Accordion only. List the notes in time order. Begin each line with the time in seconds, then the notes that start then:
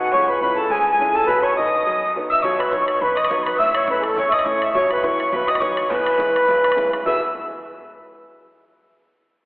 0.00 F#4
0.13 C#5
0.28 B4
0.42 B4
0.58 A4
0.70 G#4
0.93 G#4
1.14 A4
1.27 B4
1.43 C#5
1.57 D#5
2.32 E5
2.40 D#5
2.45 C#5
2.59 B4
2.71 C#5
2.87 C#5
3.02 B4
3.16 D#5
3.29 C#5
3.45 B4
3.59 E5
3.75 C#5
3.91 B4
4.00 G#4
4.04 A4
4.19 C#5
4.30 D#5 E5
4.48 C#5
4.64 E5
4.76 C#5
4.93 B4
5.05 C#5
5.21 C#5
5.34 B4
5.49 D#5
5.63 C#5
5.93 B4
7.06 E5